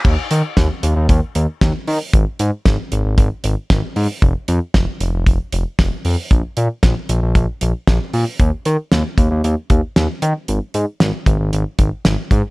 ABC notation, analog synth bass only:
X:1
M:4/4
L:1/16
Q:1/4=115
K:Ablyd
V:1 name="Analog synth bass" clef=bass
E,, z E, z E,, z E,, E,, E,, z E,, z E,, z E, z | A,,, z A,, z A,,, z A,,, A,,, A,,, z A,,, z A,,, z A,, z | F,,, z F,, z F,,, z F,,, F,,, F,,, z F,,, z F,,, z F,, z | B,,, z B,, z B,,, z B,,, B,,, B,,, z B,,, z B,,, z B,, z |
E,, z E, z E,, z E,, E,, E,, z E,, z E,, z E, z | A,,, z A,, z A,,, z A,,, A,,, A,,, z A,,, z A,,, z A,, z |]